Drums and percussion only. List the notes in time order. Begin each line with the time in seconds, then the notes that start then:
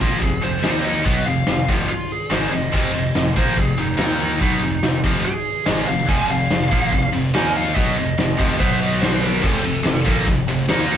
0.01 kick, open hi-hat
0.22 kick, open hi-hat
0.44 open hi-hat
0.64 snare
0.74 snare
0.85 open hi-hat
1.05 kick, open hi-hat
1.26 open hi-hat
1.47 snare, open hi-hat
1.68 kick, open hi-hat
1.89 open hi-hat
2.11 open hi-hat
2.31 snare, open hi-hat
2.52 open hi-hat
2.73 kick, crash
2.95 open hi-hat
3.15 snare, open hi-hat
3.36 kick, open hi-hat
3.57 kick, open hi-hat
3.78 open hi-hat
3.99 snare, open hi-hat
4.09 snare
4.20 open hi-hat
4.41 kick, open hi-hat
4.61 open hi-hat
4.83 snare, open hi-hat
5.04 kick, open hi-hat
5.24 open hi-hat
5.46 open hi-hat
5.66 snare, open hi-hat
5.87 open hi-hat
6.08 kick, crash
6.30 open hi-hat
6.51 snare, open hi-hat
6.71 kick, open hi-hat
6.93 kick, open hi-hat
7.14 open hi-hat
7.35 snare, open hi-hat
7.55 open hi-hat
7.77 kick, open hi-hat
7.98 open hi-hat
8.19 snare, open hi-hat
8.39 kick, open hi-hat
8.60 kick, open hi-hat
8.82 open hi-hat
9.03 snare, open hi-hat
9.24 open hi-hat
9.44 kick, crash
9.65 open hi-hat
9.86 snare, open hi-hat
10.06 kick, open hi-hat
10.27 kick, open hi-hat
10.48 open hi-hat
10.69 snare, open hi-hat
10.80 snare
10.90 open hi-hat